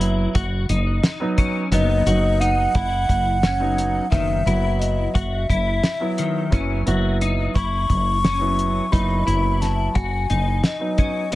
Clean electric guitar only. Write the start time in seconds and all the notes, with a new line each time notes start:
Already playing: E4
0.35 F#4
0.69 D#4
1.38 C#4
1.73 B3
2.07 F#4
2.41 D#4
2.75 E4
3.43 C#4
4.12 D#3
4.47 E4
5.15 F#4
5.50 E4
6.19 D#3
6.53 C#4
6.88 F#4
7.22 D#4
7.56 E4
8.24 C#4
8.92 D#4
9.27 E4
9.95 F#4
10.30 D#4
10.98 C#4